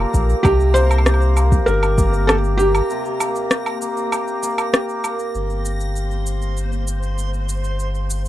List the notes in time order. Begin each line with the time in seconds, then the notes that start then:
Already playing: A#2 A#3 G4 A#6
0.00 A4
0.14 A#1 A#3, kick, cabasa
0.30 cabasa
0.43 C2 C3 G4, kick, cabasa, low woodblock
0.60 cabasa
0.74 A#3 C5, cabasa
0.91 cabasa, low woodblock
0.98 low woodblock
1.06 G4, cross-stick, cabasa, low woodblock
1.14 low woodblock
1.21 cabasa
1.36 A#3, cabasa, low woodblock
1.52 kick, cabasa
1.66 G1 G4 A#4, cabasa
1.83 cabasa, low woodblock
1.98 A#3, kick, cabasa
2.14 cabasa
2.27 G4 A4, cross-stick, cabasa, low woodblock
2.44 cabasa
2.58 A#3 G4, cabasa
2.75 cabasa, low woodblock
2.90 C3, cabasa
3.05 cabasa
3.20 A#3, cabasa, low woodblock
3.36 cabasa
3.51 G4, cross-stick, cabasa
3.66 cabasa, low woodblock
3.81 A#3, cabasa
3.97 cabasa
4.12 G4, cabasa, low woodblock
4.28 cabasa
4.43 A#3, cabasa
4.58 cabasa, low woodblock
4.73 G4, cross-stick, cabasa
4.89 cabasa
5.04 A#3, cabasa, low woodblock
5.19 cabasa
5.34 G1 C5 C6, cabasa
5.50 cabasa
5.65 cabasa
5.80 cabasa
5.96 cabasa
6.11 cabasa
6.26 cabasa
6.42 cabasa
6.57 cabasa
6.72 cabasa
6.87 cabasa
7.03 cabasa
7.18 cabasa
7.34 cabasa
7.49 cabasa
7.64 cabasa
7.79 cabasa
7.95 cabasa
8.10 cabasa
8.25 cabasa